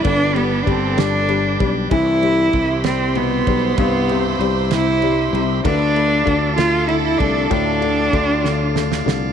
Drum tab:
RD |x-x-x-x-x-x-|x-x-x-x-x-x-|x-x-x-x-x-x-|x-x-x-x-x-x-|
SD |------o-----|------o-----|------o-----|------o-----|
BD |o---o-----o-|o---o-----o-|o-----------|o---o-----o-|

RD |x-x-x-------|
SD |------o-ooo-|
BD |o---o-------|